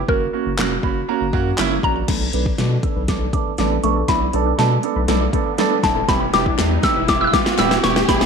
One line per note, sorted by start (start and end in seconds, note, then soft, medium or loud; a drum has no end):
0.00 0.10 B4 loud
0.08 0.28 F#1 loud
0.08 0.23 A#3 medium
0.08 0.24 C#4 medium
0.08 0.24 F#4 loud
0.08 1.55 A#4 medium
0.08 kick loud
0.33 0.48 A#3 medium
0.33 0.49 C#4 medium
0.33 0.49 F#4 medium
0.46 0.56 F#1 loud
0.58 0.78 E1 medium
0.58 0.73 A#3 medium
0.58 0.74 C#4 medium
0.58 0.74 F#4 medium
0.58 snare medium
0.58 clap loud
0.83 1.03 F#1 medium
0.83 0.99 A#3 medium
0.83 0.99 C#4 medium
0.83 0.99 F#4 loud
0.83 1.07 B5 medium
0.83 kick medium
1.08 1.24 A#3 medium
1.08 1.24 C#4 medium
1.08 1.24 F#4 loud
1.08 1.32 A#5 medium
1.21 1.31 F#1 medium
1.33 1.53 F#2 loud
1.33 1.48 A#3 loud
1.33 1.49 C#4 loud
1.33 1.49 F#4 loud
1.33 1.57 F#5 medium
1.33 kick medium
1.58 1.78 F#1 medium
1.58 1.73 A#3 loud
1.58 1.74 C#4 loud
1.58 1.74 E4 loud
1.58 1.82 E5 medium
1.58 snare medium
1.58 clap loud
1.83 2.03 A#1 loud
1.83 1.98 A#3 medium
1.83 1.99 C#4 medium
1.83 1.99 F#4 loud
1.83 2.07 D5 medium
1.83 2.10 A#5 medium
1.83 kick medium
2.08 2.28 B1 loud
2.08 2.17 A3 medium
2.08 2.23 B3 medium
2.08 2.23 D4 medium
2.08 2.24 A4 loud
2.08 2.32 B5 loud
2.08 kick loud
2.08 snare medium
2.08 closed hi-hat loud
2.08 crash loud
2.08 riser medium
2.21 2.29 B3 medium
2.33 2.53 B1 loud
2.33 2.42 A3 medium
2.33 2.48 B3 loud
2.33 2.49 D4 medium
2.33 2.49 B4 loud
2.33 2.57 D6 loud
2.33 closed hi-hat medium
2.46 2.54 D4 medium
2.46 kick medium
2.58 2.78 B2 loud
2.58 2.67 A3 medium
2.58 2.73 B3 medium
2.58 2.74 D4 medium
2.58 2.74 A4 medium
2.58 2.84 D6 loud
2.58 snare medium
2.58 closed hi-hat medium
2.83 2.98 B3 medium
2.83 2.99 D4 medium
2.83 2.99 A4 medium
2.83 3.09 E6 loud
2.83 kick medium
2.83 closed hi-hat medium
2.96 3.06 B1 medium
2.96 3.04 B4 medium
3.08 3.28 B1 loud
3.08 3.17 A3 medium
3.08 3.23 B3 medium
3.08 3.24 D4 medium
3.08 3.24 A4 medium
3.08 3.32 D6 loud
3.08 kick medium
3.08 snare medium
3.08 closed hi-hat loud
3.21 3.29 D5 medium
3.33 3.42 A3 medium
3.33 3.48 B3 medium
3.33 3.49 D4 medium
3.33 3.49 A4 medium
3.33 3.57 D6 loud
3.33 kick medium
3.33 closed hi-hat medium
3.58 3.78 A1 loud
3.58 3.67 A3 medium
3.58 3.73 B3 medium
3.58 3.74 D4 medium
3.58 3.74 A4 loud
3.58 3.84 D6 loud
3.58 snare medium
3.58 closed hi-hat medium
3.71 3.79 D4 medium
3.83 4.03 A#1 medium
3.83 3.92 A3 medium
3.83 3.99 B3 medium
3.83 3.99 D4 medium
3.83 3.99 A4 medium
3.83 3.95 C#6 loud
3.83 closed hi-hat medium
3.96 4.04 A4 medium
4.08 4.28 B1 loud
4.08 4.17 A3 medium
4.08 4.23 B3 loud
4.08 4.24 D4 medium
4.08 4.24 E4 loud
4.08 4.55 B5 loud
4.08 kick loud
4.08 snare medium
4.08 closed hi-hat loud
4.21 4.29 B3 medium
4.33 4.53 B1 medium
4.33 4.42 A3 medium
4.33 4.48 B3 loud
4.33 4.49 D4 medium
4.33 4.49 A4 loud
4.33 closed hi-hat medium
4.46 4.54 D4 medium
4.58 4.78 B2 loud
4.58 4.67 A3 medium
4.58 4.73 B3 medium
4.58 4.73 D4 medium
4.58 4.74 A4 medium
4.58 5.82 A5 medium
4.58 snare medium
4.58 closed hi-hat medium
4.83 4.98 B3 medium
4.83 4.99 D4 medium
4.83 4.99 A4 medium
4.83 closed hi-hat medium
4.96 5.06 B1 medium
4.96 5.04 B4 medium
5.08 5.28 B1 loud
5.08 5.17 A3 medium
5.08 5.23 B3 medium
5.08 5.24 D4 medium
5.08 5.24 A4 medium
5.08 snare medium
5.08 closed hi-hat loud
5.21 5.29 D5 medium
5.33 5.42 A3 medium
5.33 5.48 B3 loud
5.33 5.48 D4 medium
5.33 5.49 A4 loud
5.33 kick medium
5.33 closed hi-hat medium
5.58 5.67 A3 medium
5.58 5.73 B3 loud
5.58 5.74 D4 loud
5.58 5.74 A4 loud
5.58 snare medium
5.58 closed hi-hat medium
5.71 5.79 D4 medium
5.83 6.03 D#1 loud
5.83 5.92 A3 medium
5.83 5.98 B3 medium
5.83 5.99 D4 medium
5.83 5.99 E4 medium
5.83 6.07 A5 medium
5.83 kick loud
5.83 snare medium
5.83 closed hi-hat medium
5.96 6.04 A4 medium
6.08 6.28 E1 loud
6.08 6.17 G3 medium
6.08 6.24 B3 loud
6.08 6.24 E4 medium
6.08 6.24 G4 loud
6.08 6.20 B5 loud
6.08 kick loud
6.08 snare medium
6.08 closed hi-hat loud
6.21 6.29 B3 medium
6.33 6.53 E1 loud
6.33 6.42 G3 medium
6.33 6.48 B3 loud
6.33 6.49 E4 medium
6.33 6.49 G4 loud
6.33 6.85 D6 loud
6.33 snare medium
6.33 closed hi-hat medium
6.46 6.54 E4 medium
6.46 kick medium
6.58 6.78 E2 loud
6.58 6.67 G3 medium
6.58 6.73 B3 medium
6.58 6.74 E4 medium
6.58 6.74 G4 medium
6.58 snare medium
6.58 clap medium
6.58 closed hi-hat loud
6.83 6.98 B3 medium
6.83 6.99 E4 medium
6.83 6.99 G4 medium
6.83 7.09 E6 loud
6.83 kick medium
6.83 snare loud
6.83 closed hi-hat medium
6.96 7.06 E1 medium
6.96 7.04 B4 medium
7.08 7.28 E1 loud
7.08 7.17 G3 medium
7.08 7.23 B3 medium
7.08 7.24 E4 medium
7.08 7.24 G4 medium
7.08 7.22 D6 loud
7.08 kick loud
7.08 snare loud
7.08 closed hi-hat loud
7.21 7.29 E5 medium
7.21 7.24 E6 medium
7.21 7.27 F#6 medium
7.27 7.34 E6 medium
7.33 7.42 G3 medium
7.33 7.48 B3 medium
7.33 7.49 E4 medium
7.33 7.49 G4 medium
7.33 7.59 D6 loud
7.33 kick loud
7.33 snare loud
7.33 closed hi-hat medium
7.46 snare loud
7.58 7.78 D1 loud
7.58 7.67 G3 medium
7.58 7.73 B3 loud
7.58 7.74 E4 medium
7.58 7.74 G4 loud
7.58 7.84 E6 loud
7.58 snare loud
7.58 clap medium
7.58 closed hi-hat medium
7.71 7.79 E4 medium
7.71 snare loud
7.83 8.03 D#1 loud
7.83 7.92 G3 medium
7.83 7.98 B3 medium
7.83 7.99 E4 medium
7.83 7.99 G4 medium
7.83 8.09 C#6 loud
7.83 snare loud
7.83 closed hi-hat medium
7.96 8.04 G4 medium
7.96 snare loud
8.08 8.26 E1 loud
8.08 8.17 G3 loud
8.08 8.23 B3 loud
8.08 8.24 E4 medium
8.08 8.24 G4 loud
8.08 8.26 B5 medium
8.08 kick loud
8.08 snare loud
8.08 closed hi-hat loud
8.21 8.26 B3 medium
8.21 snare loud